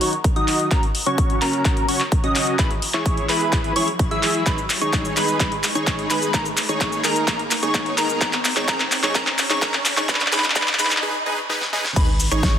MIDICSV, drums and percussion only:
0, 0, Header, 1, 2, 480
1, 0, Start_track
1, 0, Key_signature, 5, "minor"
1, 0, Tempo, 468750
1, 730, Time_signature, 4, 2, 24, 8
1, 12889, End_track
2, 0, Start_track
2, 0, Title_t, "Drums"
2, 11, Note_on_c, 9, 46, 105
2, 113, Note_off_c, 9, 46, 0
2, 131, Note_on_c, 9, 42, 38
2, 234, Note_off_c, 9, 42, 0
2, 250, Note_on_c, 9, 36, 127
2, 250, Note_on_c, 9, 42, 89
2, 352, Note_off_c, 9, 36, 0
2, 352, Note_off_c, 9, 42, 0
2, 370, Note_on_c, 9, 42, 41
2, 472, Note_off_c, 9, 42, 0
2, 490, Note_on_c, 9, 39, 59
2, 490, Note_on_c, 9, 46, 99
2, 592, Note_off_c, 9, 39, 0
2, 592, Note_off_c, 9, 46, 0
2, 610, Note_on_c, 9, 42, 41
2, 712, Note_off_c, 9, 42, 0
2, 730, Note_on_c, 9, 36, 124
2, 730, Note_on_c, 9, 39, 57
2, 730, Note_on_c, 9, 42, 88
2, 832, Note_off_c, 9, 36, 0
2, 832, Note_off_c, 9, 39, 0
2, 832, Note_off_c, 9, 42, 0
2, 850, Note_on_c, 9, 42, 39
2, 952, Note_off_c, 9, 42, 0
2, 970, Note_on_c, 9, 46, 103
2, 1072, Note_off_c, 9, 46, 0
2, 1090, Note_on_c, 9, 42, 39
2, 1192, Note_off_c, 9, 42, 0
2, 1210, Note_on_c, 9, 36, 121
2, 1210, Note_on_c, 9, 42, 90
2, 1312, Note_off_c, 9, 36, 0
2, 1312, Note_off_c, 9, 42, 0
2, 1330, Note_on_c, 9, 42, 38
2, 1432, Note_off_c, 9, 42, 0
2, 1450, Note_on_c, 9, 39, 59
2, 1450, Note_on_c, 9, 46, 93
2, 1552, Note_off_c, 9, 39, 0
2, 1552, Note_off_c, 9, 46, 0
2, 1571, Note_on_c, 9, 42, 41
2, 1673, Note_off_c, 9, 42, 0
2, 1690, Note_on_c, 9, 36, 121
2, 1690, Note_on_c, 9, 39, 61
2, 1690, Note_on_c, 9, 42, 88
2, 1792, Note_off_c, 9, 36, 0
2, 1793, Note_off_c, 9, 39, 0
2, 1793, Note_off_c, 9, 42, 0
2, 1811, Note_on_c, 9, 42, 38
2, 1913, Note_off_c, 9, 42, 0
2, 1931, Note_on_c, 9, 46, 114
2, 2033, Note_off_c, 9, 46, 0
2, 2051, Note_on_c, 9, 39, 57
2, 2153, Note_off_c, 9, 39, 0
2, 2170, Note_on_c, 9, 36, 127
2, 2171, Note_on_c, 9, 42, 89
2, 2272, Note_off_c, 9, 36, 0
2, 2273, Note_off_c, 9, 42, 0
2, 2290, Note_on_c, 9, 42, 37
2, 2393, Note_off_c, 9, 42, 0
2, 2411, Note_on_c, 9, 39, 67
2, 2411, Note_on_c, 9, 46, 100
2, 2513, Note_off_c, 9, 39, 0
2, 2513, Note_off_c, 9, 46, 0
2, 2531, Note_on_c, 9, 42, 37
2, 2633, Note_off_c, 9, 42, 0
2, 2650, Note_on_c, 9, 36, 127
2, 2650, Note_on_c, 9, 39, 66
2, 2650, Note_on_c, 9, 42, 90
2, 2752, Note_off_c, 9, 36, 0
2, 2752, Note_off_c, 9, 39, 0
2, 2752, Note_off_c, 9, 42, 0
2, 2770, Note_on_c, 9, 42, 38
2, 2873, Note_off_c, 9, 42, 0
2, 2890, Note_on_c, 9, 46, 99
2, 2993, Note_off_c, 9, 46, 0
2, 3011, Note_on_c, 9, 39, 60
2, 3113, Note_off_c, 9, 39, 0
2, 3130, Note_on_c, 9, 36, 125
2, 3131, Note_on_c, 9, 42, 89
2, 3232, Note_off_c, 9, 36, 0
2, 3233, Note_off_c, 9, 42, 0
2, 3251, Note_on_c, 9, 42, 38
2, 3353, Note_off_c, 9, 42, 0
2, 3370, Note_on_c, 9, 39, 65
2, 3370, Note_on_c, 9, 46, 86
2, 3472, Note_off_c, 9, 39, 0
2, 3472, Note_off_c, 9, 46, 0
2, 3490, Note_on_c, 9, 42, 38
2, 3592, Note_off_c, 9, 42, 0
2, 3610, Note_on_c, 9, 36, 126
2, 3610, Note_on_c, 9, 39, 69
2, 3610, Note_on_c, 9, 42, 86
2, 3712, Note_off_c, 9, 36, 0
2, 3712, Note_off_c, 9, 39, 0
2, 3712, Note_off_c, 9, 42, 0
2, 3730, Note_on_c, 9, 42, 36
2, 3833, Note_off_c, 9, 42, 0
2, 3850, Note_on_c, 9, 46, 109
2, 3952, Note_off_c, 9, 46, 0
2, 3970, Note_on_c, 9, 42, 38
2, 4073, Note_off_c, 9, 42, 0
2, 4090, Note_on_c, 9, 36, 127
2, 4090, Note_on_c, 9, 42, 84
2, 4192, Note_off_c, 9, 36, 0
2, 4193, Note_off_c, 9, 42, 0
2, 4211, Note_on_c, 9, 42, 36
2, 4313, Note_off_c, 9, 42, 0
2, 4331, Note_on_c, 9, 39, 76
2, 4331, Note_on_c, 9, 46, 95
2, 4433, Note_off_c, 9, 39, 0
2, 4433, Note_off_c, 9, 46, 0
2, 4451, Note_on_c, 9, 42, 37
2, 4553, Note_off_c, 9, 42, 0
2, 4570, Note_on_c, 9, 36, 124
2, 4571, Note_on_c, 9, 39, 72
2, 4571, Note_on_c, 9, 42, 87
2, 4572, Note_on_c, 9, 82, 44
2, 4672, Note_off_c, 9, 36, 0
2, 4673, Note_off_c, 9, 39, 0
2, 4673, Note_off_c, 9, 42, 0
2, 4674, Note_off_c, 9, 82, 0
2, 4691, Note_on_c, 9, 42, 38
2, 4691, Note_on_c, 9, 82, 30
2, 4793, Note_off_c, 9, 42, 0
2, 4794, Note_off_c, 9, 82, 0
2, 4811, Note_on_c, 9, 39, 75
2, 4811, Note_on_c, 9, 46, 107
2, 4811, Note_on_c, 9, 82, 73
2, 4913, Note_off_c, 9, 39, 0
2, 4913, Note_off_c, 9, 46, 0
2, 4914, Note_off_c, 9, 82, 0
2, 4930, Note_on_c, 9, 42, 39
2, 4931, Note_on_c, 9, 82, 34
2, 5033, Note_off_c, 9, 42, 0
2, 5033, Note_off_c, 9, 82, 0
2, 5050, Note_on_c, 9, 36, 117
2, 5050, Note_on_c, 9, 39, 77
2, 5050, Note_on_c, 9, 42, 89
2, 5050, Note_on_c, 9, 82, 44
2, 5152, Note_off_c, 9, 36, 0
2, 5152, Note_off_c, 9, 39, 0
2, 5152, Note_off_c, 9, 42, 0
2, 5153, Note_off_c, 9, 82, 0
2, 5171, Note_on_c, 9, 42, 39
2, 5171, Note_on_c, 9, 82, 34
2, 5273, Note_off_c, 9, 42, 0
2, 5274, Note_off_c, 9, 82, 0
2, 5291, Note_on_c, 9, 39, 74
2, 5291, Note_on_c, 9, 46, 92
2, 5291, Note_on_c, 9, 82, 74
2, 5393, Note_off_c, 9, 39, 0
2, 5393, Note_off_c, 9, 46, 0
2, 5394, Note_off_c, 9, 82, 0
2, 5411, Note_on_c, 9, 42, 37
2, 5412, Note_on_c, 9, 82, 34
2, 5514, Note_off_c, 9, 42, 0
2, 5514, Note_off_c, 9, 82, 0
2, 5530, Note_on_c, 9, 36, 119
2, 5530, Note_on_c, 9, 39, 79
2, 5530, Note_on_c, 9, 42, 90
2, 5531, Note_on_c, 9, 82, 45
2, 5632, Note_off_c, 9, 36, 0
2, 5633, Note_off_c, 9, 39, 0
2, 5633, Note_off_c, 9, 42, 0
2, 5633, Note_off_c, 9, 82, 0
2, 5651, Note_on_c, 9, 42, 37
2, 5753, Note_off_c, 9, 42, 0
2, 5770, Note_on_c, 9, 39, 81
2, 5770, Note_on_c, 9, 46, 100
2, 5771, Note_on_c, 9, 82, 78
2, 5873, Note_off_c, 9, 39, 0
2, 5873, Note_off_c, 9, 46, 0
2, 5873, Note_off_c, 9, 82, 0
2, 5891, Note_on_c, 9, 42, 39
2, 5891, Note_on_c, 9, 82, 35
2, 5993, Note_off_c, 9, 42, 0
2, 5994, Note_off_c, 9, 82, 0
2, 6010, Note_on_c, 9, 36, 127
2, 6011, Note_on_c, 9, 39, 80
2, 6011, Note_on_c, 9, 42, 83
2, 6011, Note_on_c, 9, 82, 44
2, 6112, Note_off_c, 9, 36, 0
2, 6113, Note_off_c, 9, 39, 0
2, 6113, Note_off_c, 9, 42, 0
2, 6114, Note_off_c, 9, 82, 0
2, 6131, Note_on_c, 9, 42, 39
2, 6233, Note_off_c, 9, 42, 0
2, 6250, Note_on_c, 9, 39, 81
2, 6250, Note_on_c, 9, 46, 90
2, 6251, Note_on_c, 9, 82, 85
2, 6353, Note_off_c, 9, 39, 0
2, 6353, Note_off_c, 9, 46, 0
2, 6353, Note_off_c, 9, 82, 0
2, 6370, Note_on_c, 9, 42, 37
2, 6371, Note_on_c, 9, 82, 34
2, 6473, Note_off_c, 9, 42, 0
2, 6473, Note_off_c, 9, 82, 0
2, 6490, Note_on_c, 9, 36, 124
2, 6490, Note_on_c, 9, 39, 82
2, 6490, Note_on_c, 9, 42, 92
2, 6491, Note_on_c, 9, 82, 48
2, 6592, Note_off_c, 9, 36, 0
2, 6592, Note_off_c, 9, 39, 0
2, 6592, Note_off_c, 9, 42, 0
2, 6593, Note_off_c, 9, 82, 0
2, 6610, Note_on_c, 9, 42, 40
2, 6610, Note_on_c, 9, 82, 33
2, 6712, Note_off_c, 9, 42, 0
2, 6713, Note_off_c, 9, 82, 0
2, 6730, Note_on_c, 9, 39, 77
2, 6730, Note_on_c, 9, 46, 101
2, 6731, Note_on_c, 9, 82, 83
2, 6833, Note_off_c, 9, 39, 0
2, 6833, Note_off_c, 9, 46, 0
2, 6833, Note_off_c, 9, 82, 0
2, 6851, Note_on_c, 9, 82, 35
2, 6954, Note_off_c, 9, 82, 0
2, 6970, Note_on_c, 9, 36, 113
2, 6971, Note_on_c, 9, 39, 82
2, 6971, Note_on_c, 9, 42, 94
2, 6971, Note_on_c, 9, 82, 49
2, 7072, Note_off_c, 9, 36, 0
2, 7073, Note_off_c, 9, 39, 0
2, 7073, Note_off_c, 9, 42, 0
2, 7073, Note_off_c, 9, 82, 0
2, 7090, Note_on_c, 9, 42, 41
2, 7091, Note_on_c, 9, 82, 35
2, 7193, Note_off_c, 9, 42, 0
2, 7193, Note_off_c, 9, 82, 0
2, 7210, Note_on_c, 9, 39, 79
2, 7210, Note_on_c, 9, 46, 85
2, 7210, Note_on_c, 9, 82, 76
2, 7312, Note_off_c, 9, 39, 0
2, 7312, Note_off_c, 9, 46, 0
2, 7313, Note_off_c, 9, 82, 0
2, 7331, Note_on_c, 9, 42, 40
2, 7331, Note_on_c, 9, 82, 35
2, 7433, Note_off_c, 9, 42, 0
2, 7434, Note_off_c, 9, 82, 0
2, 7449, Note_on_c, 9, 36, 121
2, 7451, Note_on_c, 9, 39, 88
2, 7451, Note_on_c, 9, 42, 92
2, 7452, Note_on_c, 9, 82, 48
2, 7552, Note_off_c, 9, 36, 0
2, 7553, Note_off_c, 9, 39, 0
2, 7553, Note_off_c, 9, 42, 0
2, 7554, Note_off_c, 9, 82, 0
2, 7571, Note_on_c, 9, 42, 41
2, 7674, Note_off_c, 9, 42, 0
2, 7690, Note_on_c, 9, 39, 84
2, 7690, Note_on_c, 9, 46, 97
2, 7691, Note_on_c, 9, 82, 77
2, 7793, Note_off_c, 9, 39, 0
2, 7793, Note_off_c, 9, 46, 0
2, 7793, Note_off_c, 9, 82, 0
2, 7811, Note_on_c, 9, 42, 40
2, 7811, Note_on_c, 9, 82, 34
2, 7913, Note_off_c, 9, 42, 0
2, 7914, Note_off_c, 9, 82, 0
2, 7929, Note_on_c, 9, 36, 121
2, 7930, Note_on_c, 9, 39, 85
2, 7930, Note_on_c, 9, 42, 85
2, 7931, Note_on_c, 9, 82, 48
2, 8032, Note_off_c, 9, 36, 0
2, 8033, Note_off_c, 9, 39, 0
2, 8033, Note_off_c, 9, 42, 0
2, 8033, Note_off_c, 9, 82, 0
2, 8050, Note_on_c, 9, 42, 38
2, 8152, Note_off_c, 9, 42, 0
2, 8169, Note_on_c, 9, 39, 91
2, 8169, Note_on_c, 9, 46, 94
2, 8169, Note_on_c, 9, 82, 84
2, 8271, Note_off_c, 9, 39, 0
2, 8271, Note_off_c, 9, 46, 0
2, 8272, Note_off_c, 9, 82, 0
2, 8290, Note_on_c, 9, 42, 41
2, 8290, Note_on_c, 9, 82, 37
2, 8392, Note_off_c, 9, 42, 0
2, 8393, Note_off_c, 9, 82, 0
2, 8409, Note_on_c, 9, 36, 118
2, 8410, Note_on_c, 9, 39, 93
2, 8410, Note_on_c, 9, 42, 96
2, 8410, Note_on_c, 9, 82, 49
2, 8511, Note_off_c, 9, 36, 0
2, 8512, Note_off_c, 9, 39, 0
2, 8512, Note_off_c, 9, 42, 0
2, 8513, Note_off_c, 9, 82, 0
2, 8529, Note_on_c, 9, 39, 83
2, 8529, Note_on_c, 9, 42, 43
2, 8530, Note_on_c, 9, 82, 35
2, 8632, Note_off_c, 9, 39, 0
2, 8632, Note_off_c, 9, 42, 0
2, 8632, Note_off_c, 9, 82, 0
2, 8650, Note_on_c, 9, 39, 92
2, 8650, Note_on_c, 9, 46, 99
2, 8650, Note_on_c, 9, 82, 81
2, 8752, Note_off_c, 9, 39, 0
2, 8752, Note_off_c, 9, 46, 0
2, 8753, Note_off_c, 9, 82, 0
2, 8771, Note_on_c, 9, 39, 81
2, 8771, Note_on_c, 9, 42, 42
2, 8771, Note_on_c, 9, 82, 37
2, 8873, Note_off_c, 9, 39, 0
2, 8873, Note_off_c, 9, 42, 0
2, 8874, Note_off_c, 9, 82, 0
2, 8889, Note_on_c, 9, 36, 118
2, 8891, Note_on_c, 9, 39, 95
2, 8891, Note_on_c, 9, 42, 99
2, 8891, Note_on_c, 9, 82, 49
2, 8991, Note_off_c, 9, 36, 0
2, 8993, Note_off_c, 9, 39, 0
2, 8993, Note_off_c, 9, 42, 0
2, 8993, Note_off_c, 9, 82, 0
2, 9010, Note_on_c, 9, 39, 90
2, 9010, Note_on_c, 9, 42, 41
2, 9011, Note_on_c, 9, 82, 33
2, 9113, Note_off_c, 9, 39, 0
2, 9113, Note_off_c, 9, 42, 0
2, 9113, Note_off_c, 9, 82, 0
2, 9130, Note_on_c, 9, 39, 94
2, 9130, Note_on_c, 9, 46, 84
2, 9131, Note_on_c, 9, 82, 78
2, 9233, Note_off_c, 9, 39, 0
2, 9233, Note_off_c, 9, 46, 0
2, 9233, Note_off_c, 9, 82, 0
2, 9250, Note_on_c, 9, 39, 86
2, 9250, Note_on_c, 9, 42, 40
2, 9251, Note_on_c, 9, 82, 37
2, 9352, Note_off_c, 9, 39, 0
2, 9352, Note_off_c, 9, 42, 0
2, 9353, Note_off_c, 9, 82, 0
2, 9369, Note_on_c, 9, 36, 115
2, 9370, Note_on_c, 9, 39, 100
2, 9370, Note_on_c, 9, 42, 101
2, 9371, Note_on_c, 9, 82, 49
2, 9471, Note_off_c, 9, 36, 0
2, 9473, Note_off_c, 9, 39, 0
2, 9473, Note_off_c, 9, 42, 0
2, 9473, Note_off_c, 9, 82, 0
2, 9490, Note_on_c, 9, 39, 89
2, 9490, Note_on_c, 9, 42, 43
2, 9592, Note_off_c, 9, 39, 0
2, 9592, Note_off_c, 9, 42, 0
2, 9609, Note_on_c, 9, 39, 94
2, 9609, Note_on_c, 9, 46, 101
2, 9610, Note_on_c, 9, 82, 78
2, 9712, Note_off_c, 9, 39, 0
2, 9712, Note_off_c, 9, 46, 0
2, 9712, Note_off_c, 9, 82, 0
2, 9730, Note_on_c, 9, 39, 86
2, 9731, Note_on_c, 9, 82, 36
2, 9833, Note_off_c, 9, 39, 0
2, 9833, Note_off_c, 9, 82, 0
2, 9849, Note_on_c, 9, 36, 126
2, 9850, Note_on_c, 9, 39, 92
2, 9850, Note_on_c, 9, 42, 88
2, 9851, Note_on_c, 9, 82, 48
2, 9952, Note_off_c, 9, 36, 0
2, 9953, Note_off_c, 9, 39, 0
2, 9953, Note_off_c, 9, 42, 0
2, 9953, Note_off_c, 9, 82, 0
2, 9970, Note_on_c, 9, 39, 86
2, 9970, Note_on_c, 9, 42, 42
2, 10072, Note_off_c, 9, 39, 0
2, 10072, Note_off_c, 9, 42, 0
2, 10090, Note_on_c, 9, 39, 99
2, 10090, Note_on_c, 9, 46, 94
2, 10090, Note_on_c, 9, 82, 90
2, 10192, Note_off_c, 9, 39, 0
2, 10192, Note_off_c, 9, 46, 0
2, 10193, Note_off_c, 9, 82, 0
2, 10210, Note_on_c, 9, 39, 89
2, 10211, Note_on_c, 9, 82, 35
2, 10312, Note_off_c, 9, 39, 0
2, 10313, Note_off_c, 9, 82, 0
2, 10329, Note_on_c, 9, 36, 124
2, 10330, Note_on_c, 9, 39, 101
2, 10330, Note_on_c, 9, 42, 103
2, 10331, Note_on_c, 9, 82, 45
2, 10390, Note_off_c, 9, 39, 0
2, 10390, Note_on_c, 9, 39, 92
2, 10432, Note_off_c, 9, 36, 0
2, 10433, Note_off_c, 9, 42, 0
2, 10433, Note_off_c, 9, 82, 0
2, 10451, Note_off_c, 9, 39, 0
2, 10451, Note_on_c, 9, 39, 90
2, 10451, Note_on_c, 9, 42, 43
2, 10451, Note_on_c, 9, 82, 31
2, 10510, Note_off_c, 9, 39, 0
2, 10510, Note_on_c, 9, 39, 93
2, 10553, Note_off_c, 9, 42, 0
2, 10553, Note_off_c, 9, 82, 0
2, 10571, Note_off_c, 9, 39, 0
2, 10571, Note_on_c, 9, 39, 94
2, 10571, Note_on_c, 9, 46, 101
2, 10571, Note_on_c, 9, 82, 79
2, 10631, Note_off_c, 9, 39, 0
2, 10631, Note_on_c, 9, 39, 93
2, 10673, Note_off_c, 9, 46, 0
2, 10674, Note_off_c, 9, 82, 0
2, 10692, Note_off_c, 9, 39, 0
2, 10692, Note_on_c, 9, 39, 91
2, 10692, Note_on_c, 9, 42, 41
2, 10692, Note_on_c, 9, 82, 35
2, 10751, Note_off_c, 9, 39, 0
2, 10751, Note_on_c, 9, 39, 98
2, 10794, Note_off_c, 9, 42, 0
2, 10795, Note_off_c, 9, 82, 0
2, 10810, Note_on_c, 9, 36, 117
2, 10812, Note_off_c, 9, 39, 0
2, 10812, Note_on_c, 9, 39, 106
2, 10812, Note_on_c, 9, 42, 98
2, 10812, Note_on_c, 9, 82, 48
2, 10871, Note_off_c, 9, 39, 0
2, 10871, Note_on_c, 9, 39, 92
2, 10912, Note_off_c, 9, 36, 0
2, 10914, Note_off_c, 9, 42, 0
2, 10915, Note_off_c, 9, 82, 0
2, 10931, Note_off_c, 9, 39, 0
2, 10931, Note_on_c, 9, 39, 96
2, 10931, Note_on_c, 9, 42, 43
2, 10932, Note_on_c, 9, 82, 34
2, 10991, Note_off_c, 9, 39, 0
2, 10991, Note_on_c, 9, 39, 94
2, 11034, Note_off_c, 9, 42, 0
2, 11034, Note_off_c, 9, 82, 0
2, 11050, Note_off_c, 9, 39, 0
2, 11050, Note_on_c, 9, 39, 100
2, 11050, Note_on_c, 9, 46, 89
2, 11051, Note_on_c, 9, 82, 80
2, 11111, Note_off_c, 9, 39, 0
2, 11111, Note_on_c, 9, 39, 89
2, 11153, Note_off_c, 9, 46, 0
2, 11153, Note_off_c, 9, 82, 0
2, 11171, Note_off_c, 9, 39, 0
2, 11171, Note_on_c, 9, 39, 95
2, 11171, Note_on_c, 9, 42, 42
2, 11171, Note_on_c, 9, 82, 37
2, 11230, Note_off_c, 9, 39, 0
2, 11230, Note_on_c, 9, 39, 99
2, 11273, Note_off_c, 9, 42, 0
2, 11274, Note_off_c, 9, 82, 0
2, 11332, Note_off_c, 9, 39, 0
2, 11770, Note_on_c, 9, 38, 61
2, 11872, Note_off_c, 9, 38, 0
2, 11890, Note_on_c, 9, 38, 62
2, 11993, Note_off_c, 9, 38, 0
2, 12010, Note_on_c, 9, 38, 90
2, 12112, Note_off_c, 9, 38, 0
2, 12130, Note_on_c, 9, 38, 88
2, 12233, Note_off_c, 9, 38, 0
2, 12250, Note_on_c, 9, 36, 126
2, 12250, Note_on_c, 9, 42, 79
2, 12250, Note_on_c, 9, 49, 106
2, 12251, Note_on_c, 9, 82, 35
2, 12353, Note_off_c, 9, 36, 0
2, 12353, Note_off_c, 9, 42, 0
2, 12353, Note_off_c, 9, 49, 0
2, 12353, Note_off_c, 9, 82, 0
2, 12491, Note_on_c, 9, 46, 101
2, 12491, Note_on_c, 9, 82, 73
2, 12593, Note_off_c, 9, 46, 0
2, 12594, Note_off_c, 9, 82, 0
2, 12611, Note_on_c, 9, 26, 69
2, 12611, Note_on_c, 9, 42, 57
2, 12612, Note_on_c, 9, 82, 43
2, 12714, Note_off_c, 9, 26, 0
2, 12714, Note_off_c, 9, 42, 0
2, 12714, Note_off_c, 9, 82, 0
2, 12730, Note_on_c, 9, 36, 122
2, 12731, Note_on_c, 9, 42, 86
2, 12732, Note_on_c, 9, 38, 127
2, 12732, Note_on_c, 9, 82, 35
2, 12832, Note_off_c, 9, 36, 0
2, 12834, Note_off_c, 9, 42, 0
2, 12834, Note_off_c, 9, 82, 0
2, 12835, Note_off_c, 9, 38, 0
2, 12889, End_track
0, 0, End_of_file